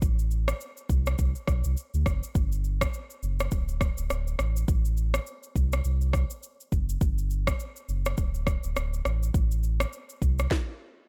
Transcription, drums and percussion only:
0.02 kick loud
0.02 shaker medium
0.19 shaker medium
0.31 shaker soft
0.48 cross-stick loud
0.48 shaker medium
0.61 shaker medium
0.77 shaker medium
0.89 kick medium
0.89 shaker medium
1.06 cross-stick loud
1.06 shaker medium
1.18 kick medium
1.18 shaker medium
1.35 shaker soft
1.47 kick medium
1.47 cross-stick medium
1.47 shaker medium
1.64 shaker medium
1.77 shaker medium
1.94 shaker medium
2.06 kick medium
2.06 cross-stick medium
2.06 shaker soft
2.23 shaker medium
2.35 kick loud
2.35 shaker medium
2.52 shaker medium
2.64 shaker soft
2.81 kick medium
2.81 cross-stick loud
2.81 shaker loud
2.94 shaker medium
3.10 shaker soft
3.23 shaker medium
3.40 cross-stick loud
3.40 shaker medium
3.51 kick medium
3.51 shaker medium
3.68 shaker medium
3.81 kick medium
3.81 cross-stick medium
3.81 shaker medium
3.98 shaker medium
4.10 cross-stick medium
4.10 shaker medium
4.27 shaker medium
4.39 cross-stick medium
4.39 shaker medium
4.57 shaker medium
4.68 kick loud
4.68 shaker medium
4.85 shaker medium
4.97 shaker medium
5.14 cross-stick loud
5.14 shaker medium
5.27 shaker medium
5.43 shaker medium
5.56 kick medium
5.56 shaker medium
5.73 cross-stick loud
5.73 shaker medium
5.84 shaker medium
6.01 shaker soft
6.13 kick loud
6.13 cross-stick loud
6.13 shaker medium
6.30 shaker medium
6.43 shaker medium
6.60 shaker medium
6.72 kick medium
6.72 shaker medium
6.89 shaker medium
7.01 kick loud
7.01 shaker medium
7.18 shaker medium
7.30 shaker soft
7.47 kick medium
7.47 cross-stick loud
7.47 shaker medium
7.60 shaker medium
7.76 shaker medium
7.89 shaker medium
8.06 cross-stick loud
8.06 shaker medium
8.17 kick medium
8.17 shaker medium
8.34 shaker soft
8.47 kick medium
8.47 cross-stick medium
8.47 shaker medium
8.63 shaker medium
8.76 cross-stick medium
8.76 shaker medium
8.94 shaker medium
9.05 cross-stick medium
9.05 shaker soft
9.23 shaker medium
9.34 kick loud
9.34 shaker medium
9.51 shaker medium
9.63 shaker soft
9.80 cross-stick loud
9.80 shaker medium
9.93 shaker medium
10.09 shaker medium
10.22 kick medium
10.22 shaker medium
10.39 cross-stick medium
10.39 shaker medium
10.51 kick loud
10.51 snare medium

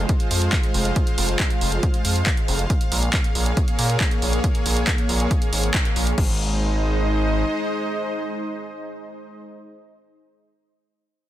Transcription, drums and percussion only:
0.09 kick loud
0.09 closed hi-hat medium
0.20 closed hi-hat medium
0.31 open hi-hat loud
0.42 closed hi-hat medium
0.53 kick loud
0.53 clap loud
0.53 closed hi-hat medium
0.63 closed hi-hat medium
0.74 open hi-hat medium
0.85 closed hi-hat medium
0.96 kick loud
0.96 closed hi-hat medium
1.07 closed hi-hat medium
1.18 open hi-hat loud
1.29 closed hi-hat medium
1.40 kick loud
1.40 clap loud
1.40 closed hi-hat medium
1.50 closed hi-hat medium
1.61 open hi-hat medium
1.72 closed hi-hat medium
1.83 kick loud
1.83 closed hi-hat medium
1.94 closed hi-hat medium
2.05 open hi-hat loud
2.16 closed hi-hat medium
2.26 kick loud
2.26 clap loud
2.26 closed hi-hat medium
2.37 closed hi-hat medium
2.48 open hi-hat medium
2.59 closed hi-hat medium
2.70 kick loud
2.70 closed hi-hat medium
2.81 closed hi-hat medium
2.92 open hi-hat loud
3.03 closed hi-hat medium
3.13 kick loud
3.13 clap loud
3.13 closed hi-hat medium
3.24 closed hi-hat medium
3.35 open hi-hat medium
3.46 closed hi-hat medium
3.57 kick loud
3.57 closed hi-hat medium
3.68 closed hi-hat medium
3.79 open hi-hat loud
3.90 closed hi-hat medium
4.00 kick loud
4.00 clap loud
4.00 closed hi-hat medium
4.11 closed hi-hat medium
4.22 open hi-hat medium
4.33 closed hi-hat medium
4.44 kick loud
4.44 closed hi-hat medium
4.55 closed hi-hat medium
4.66 open hi-hat loud
4.77 closed hi-hat medium
4.87 kick loud
4.87 clap loud
4.87 closed hi-hat medium
4.98 closed hi-hat medium
5.09 open hi-hat medium
5.20 closed hi-hat medium
5.31 kick loud
5.31 closed hi-hat medium
5.42 closed hi-hat medium
5.53 open hi-hat loud
5.64 closed hi-hat medium
5.74 kick loud
5.74 clap loud
5.74 closed hi-hat medium
5.85 closed hi-hat medium
5.96 open hi-hat medium
6.07 closed hi-hat medium
6.18 kick loud
6.18 crash medium

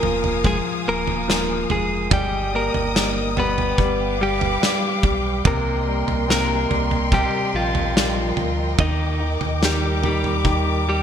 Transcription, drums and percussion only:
0.03 floor tom medium
0.24 floor tom medium
0.44 kick medium
0.44 floor tom medium
1.07 floor tom medium
1.30 snare medium
1.70 floor tom medium
2.11 kick loud
2.11 floor tom loud
2.74 floor tom medium
2.96 snare loud
3.37 floor tom medium
3.58 floor tom medium
3.78 kick medium
3.78 floor tom medium
4.41 floor tom medium
4.63 snare medium
5.03 kick medium
5.03 floor tom medium
5.45 kick loud
5.45 floor tom loud
6.08 floor tom medium
6.30 snare loud
6.71 floor tom medium
6.91 floor tom medium
7.12 kick medium
7.12 floor tom medium
7.75 floor tom medium
7.97 snare loud
8.37 floor tom medium
8.79 kick loud
8.79 floor tom loud
9.41 floor tom medium
9.63 snare loud
10.03 floor tom medium
10.24 floor tom medium
10.45 kick medium
10.45 floor tom medium

